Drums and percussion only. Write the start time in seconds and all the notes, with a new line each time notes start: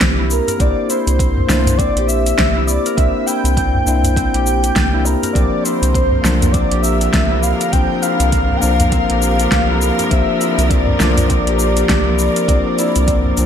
0.01 kick, snare, closed hi-hat, cabasa
0.31 cabasa
0.48 closed hi-hat, udu, cabasa
0.60 kick, closed hi-hat, cabasa
0.90 closed hi-hat, cabasa
1.07 closed hi-hat, cabasa
1.19 kick, closed hi-hat, cabasa
1.38 udu
1.50 snare, cabasa
1.66 closed hi-hat, udu, cabasa
1.79 kick, closed hi-hat, cabasa
1.97 closed hi-hat
2.09 cabasa
2.26 closed hi-hat, cabasa
2.38 kick, snare, closed hi-hat, cabasa
2.68 cabasa
2.86 closed hi-hat, cabasa
2.98 kick, closed hi-hat, cabasa
3.28 closed hi-hat, cabasa
3.45 closed hi-hat, cabasa
3.57 kick, closed hi-hat, cabasa
3.75 udu
3.87 cabasa
4.04 closed hi-hat, udu, cabasa
4.16 kick, closed hi-hat, cabasa
4.34 closed hi-hat
4.47 cabasa
4.64 closed hi-hat, cabasa
4.76 kick, snare, closed hi-hat, cabasa
5.06 cabasa
5.23 closed hi-hat, udu, cabasa
5.35 kick, closed hi-hat, cabasa
5.66 closed hi-hat, cabasa
5.83 closed hi-hat, cabasa
5.95 kick, closed hi-hat, cabasa
6.12 udu
6.25 snare, cabasa
6.42 closed hi-hat, udu, cabasa
6.54 kick, closed hi-hat, cabasa
6.71 closed hi-hat
6.84 cabasa
7.01 closed hi-hat, cabasa
7.13 kick, snare, closed hi-hat, cabasa
7.43 cabasa
7.61 closed hi-hat, cabasa
7.73 kick, closed hi-hat, cabasa
8.03 closed hi-hat, cabasa
8.20 closed hi-hat, cabasa
8.32 kick, closed hi-hat, cabasa
8.50 udu
8.62 cabasa
8.80 closed hi-hat, udu, cabasa
8.92 kick, closed hi-hat, cabasa
9.10 closed hi-hat
9.22 cabasa
9.40 closed hi-hat, cabasa
9.52 kick, snare, closed hi-hat, cabasa
9.82 cabasa
9.99 closed hi-hat, udu, cabasa
10.11 kick, closed hi-hat, cabasa
10.41 closed hi-hat, cabasa
10.59 closed hi-hat, cabasa
10.70 kick, closed hi-hat, cabasa
10.87 udu
11.00 snare, cabasa
11.17 closed hi-hat, udu, cabasa
11.30 kick, closed hi-hat, cabasa
11.47 closed hi-hat
11.59 cabasa
11.77 closed hi-hat, cabasa
11.89 kick, snare, closed hi-hat, cabasa
12.19 cabasa
12.36 closed hi-hat, cabasa
12.48 kick, closed hi-hat, cabasa
12.79 closed hi-hat, cabasa
12.96 closed hi-hat, cabasa
13.08 kick, closed hi-hat, cabasa
13.26 udu
13.37 closed hi-hat, cabasa